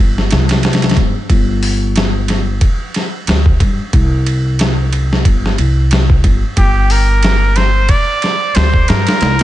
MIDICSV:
0, 0, Header, 1, 4, 480
1, 0, Start_track
1, 0, Tempo, 659341
1, 944, Time_signature, 4, 2, 24, 8
1, 6865, End_track
2, 0, Start_track
2, 0, Title_t, "Muted trumpet"
2, 0, Program_c, 0, 59
2, 4787, Note_on_c, 0, 67, 96
2, 5034, Note_on_c, 0, 70, 102
2, 5045, Note_off_c, 0, 67, 0
2, 5508, Note_on_c, 0, 72, 101
2, 5519, Note_off_c, 0, 70, 0
2, 5752, Note_on_c, 0, 74, 109
2, 5763, Note_off_c, 0, 72, 0
2, 6227, Note_on_c, 0, 72, 97
2, 6238, Note_off_c, 0, 74, 0
2, 6472, Note_on_c, 0, 70, 103
2, 6483, Note_off_c, 0, 72, 0
2, 6865, Note_off_c, 0, 70, 0
2, 6865, End_track
3, 0, Start_track
3, 0, Title_t, "Upright bass"
3, 0, Program_c, 1, 32
3, 0, Note_on_c, 1, 31, 77
3, 200, Note_off_c, 1, 31, 0
3, 232, Note_on_c, 1, 36, 86
3, 688, Note_off_c, 1, 36, 0
3, 709, Note_on_c, 1, 31, 86
3, 826, Note_off_c, 1, 31, 0
3, 948, Note_on_c, 1, 31, 89
3, 1886, Note_off_c, 1, 31, 0
3, 2387, Note_on_c, 1, 38, 87
3, 2600, Note_off_c, 1, 38, 0
3, 2627, Note_on_c, 1, 43, 91
3, 2745, Note_off_c, 1, 43, 0
3, 2865, Note_on_c, 1, 36, 97
3, 3804, Note_off_c, 1, 36, 0
3, 3824, Note_on_c, 1, 31, 78
3, 4039, Note_off_c, 1, 31, 0
3, 4068, Note_on_c, 1, 36, 80
3, 4526, Note_off_c, 1, 36, 0
3, 4545, Note_on_c, 1, 31, 82
3, 4664, Note_off_c, 1, 31, 0
3, 4785, Note_on_c, 1, 31, 90
3, 5724, Note_off_c, 1, 31, 0
3, 6231, Note_on_c, 1, 38, 96
3, 6443, Note_off_c, 1, 38, 0
3, 6472, Note_on_c, 1, 43, 89
3, 6587, Note_off_c, 1, 43, 0
3, 6709, Note_on_c, 1, 36, 96
3, 6865, Note_off_c, 1, 36, 0
3, 6865, End_track
4, 0, Start_track
4, 0, Title_t, "Drums"
4, 132, Note_on_c, 9, 38, 43
4, 205, Note_off_c, 9, 38, 0
4, 222, Note_on_c, 9, 51, 73
4, 236, Note_on_c, 9, 38, 98
4, 295, Note_off_c, 9, 51, 0
4, 308, Note_off_c, 9, 38, 0
4, 357, Note_on_c, 9, 51, 73
4, 370, Note_on_c, 9, 38, 92
4, 430, Note_off_c, 9, 51, 0
4, 443, Note_off_c, 9, 38, 0
4, 459, Note_on_c, 9, 51, 59
4, 472, Note_on_c, 9, 38, 75
4, 531, Note_off_c, 9, 51, 0
4, 531, Note_on_c, 9, 51, 61
4, 544, Note_off_c, 9, 38, 0
4, 544, Note_on_c, 9, 38, 81
4, 599, Note_off_c, 9, 51, 0
4, 599, Note_on_c, 9, 51, 62
4, 612, Note_off_c, 9, 38, 0
4, 612, Note_on_c, 9, 38, 86
4, 651, Note_off_c, 9, 51, 0
4, 651, Note_on_c, 9, 51, 65
4, 664, Note_off_c, 9, 38, 0
4, 664, Note_on_c, 9, 38, 80
4, 703, Note_on_c, 9, 36, 89
4, 704, Note_off_c, 9, 51, 0
4, 704, Note_on_c, 9, 51, 56
4, 737, Note_off_c, 9, 38, 0
4, 776, Note_off_c, 9, 36, 0
4, 776, Note_off_c, 9, 51, 0
4, 943, Note_on_c, 9, 36, 98
4, 943, Note_on_c, 9, 51, 78
4, 1016, Note_off_c, 9, 36, 0
4, 1016, Note_off_c, 9, 51, 0
4, 1184, Note_on_c, 9, 46, 75
4, 1257, Note_off_c, 9, 46, 0
4, 1424, Note_on_c, 9, 51, 76
4, 1437, Note_on_c, 9, 38, 107
4, 1497, Note_off_c, 9, 51, 0
4, 1510, Note_off_c, 9, 38, 0
4, 1662, Note_on_c, 9, 51, 62
4, 1675, Note_on_c, 9, 38, 44
4, 1735, Note_off_c, 9, 51, 0
4, 1748, Note_off_c, 9, 38, 0
4, 1901, Note_on_c, 9, 51, 76
4, 1902, Note_on_c, 9, 36, 103
4, 1974, Note_off_c, 9, 51, 0
4, 1975, Note_off_c, 9, 36, 0
4, 2143, Note_on_c, 9, 51, 67
4, 2156, Note_on_c, 9, 38, 41
4, 2216, Note_off_c, 9, 51, 0
4, 2229, Note_off_c, 9, 38, 0
4, 2383, Note_on_c, 9, 51, 81
4, 2396, Note_on_c, 9, 38, 100
4, 2456, Note_off_c, 9, 51, 0
4, 2469, Note_off_c, 9, 38, 0
4, 2517, Note_on_c, 9, 36, 85
4, 2590, Note_off_c, 9, 36, 0
4, 2622, Note_on_c, 9, 36, 85
4, 2623, Note_on_c, 9, 51, 61
4, 2695, Note_off_c, 9, 36, 0
4, 2696, Note_off_c, 9, 51, 0
4, 2862, Note_on_c, 9, 36, 102
4, 2862, Note_on_c, 9, 51, 77
4, 2935, Note_off_c, 9, 36, 0
4, 2935, Note_off_c, 9, 51, 0
4, 3105, Note_on_c, 9, 51, 68
4, 3178, Note_off_c, 9, 51, 0
4, 3343, Note_on_c, 9, 51, 81
4, 3356, Note_on_c, 9, 38, 106
4, 3415, Note_off_c, 9, 51, 0
4, 3429, Note_off_c, 9, 38, 0
4, 3586, Note_on_c, 9, 51, 60
4, 3659, Note_off_c, 9, 51, 0
4, 3732, Note_on_c, 9, 38, 49
4, 3805, Note_off_c, 9, 38, 0
4, 3823, Note_on_c, 9, 36, 97
4, 3824, Note_on_c, 9, 51, 75
4, 3896, Note_off_c, 9, 36, 0
4, 3897, Note_off_c, 9, 51, 0
4, 3973, Note_on_c, 9, 38, 45
4, 4045, Note_off_c, 9, 38, 0
4, 4065, Note_on_c, 9, 51, 64
4, 4138, Note_off_c, 9, 51, 0
4, 4302, Note_on_c, 9, 51, 77
4, 4315, Note_on_c, 9, 38, 104
4, 4375, Note_off_c, 9, 51, 0
4, 4388, Note_off_c, 9, 38, 0
4, 4438, Note_on_c, 9, 36, 85
4, 4511, Note_off_c, 9, 36, 0
4, 4542, Note_on_c, 9, 36, 83
4, 4542, Note_on_c, 9, 51, 62
4, 4615, Note_off_c, 9, 36, 0
4, 4615, Note_off_c, 9, 51, 0
4, 4782, Note_on_c, 9, 51, 86
4, 4783, Note_on_c, 9, 36, 104
4, 4854, Note_off_c, 9, 51, 0
4, 4856, Note_off_c, 9, 36, 0
4, 5023, Note_on_c, 9, 46, 70
4, 5096, Note_off_c, 9, 46, 0
4, 5261, Note_on_c, 9, 51, 82
4, 5274, Note_on_c, 9, 38, 102
4, 5333, Note_off_c, 9, 51, 0
4, 5347, Note_off_c, 9, 38, 0
4, 5502, Note_on_c, 9, 51, 64
4, 5515, Note_on_c, 9, 38, 44
4, 5574, Note_off_c, 9, 51, 0
4, 5587, Note_off_c, 9, 38, 0
4, 5741, Note_on_c, 9, 51, 79
4, 5743, Note_on_c, 9, 36, 95
4, 5814, Note_off_c, 9, 51, 0
4, 5816, Note_off_c, 9, 36, 0
4, 5985, Note_on_c, 9, 51, 63
4, 5998, Note_on_c, 9, 38, 39
4, 6057, Note_off_c, 9, 51, 0
4, 6071, Note_off_c, 9, 38, 0
4, 6223, Note_on_c, 9, 51, 75
4, 6236, Note_on_c, 9, 38, 110
4, 6296, Note_off_c, 9, 51, 0
4, 6309, Note_off_c, 9, 38, 0
4, 6360, Note_on_c, 9, 36, 91
4, 6433, Note_off_c, 9, 36, 0
4, 6465, Note_on_c, 9, 51, 75
4, 6478, Note_on_c, 9, 38, 98
4, 6538, Note_off_c, 9, 51, 0
4, 6551, Note_off_c, 9, 38, 0
4, 6600, Note_on_c, 9, 51, 73
4, 6613, Note_on_c, 9, 38, 99
4, 6673, Note_off_c, 9, 51, 0
4, 6686, Note_off_c, 9, 38, 0
4, 6703, Note_on_c, 9, 51, 74
4, 6716, Note_on_c, 9, 38, 98
4, 6776, Note_off_c, 9, 51, 0
4, 6789, Note_off_c, 9, 38, 0
4, 6837, Note_on_c, 9, 51, 75
4, 6865, Note_off_c, 9, 51, 0
4, 6865, End_track
0, 0, End_of_file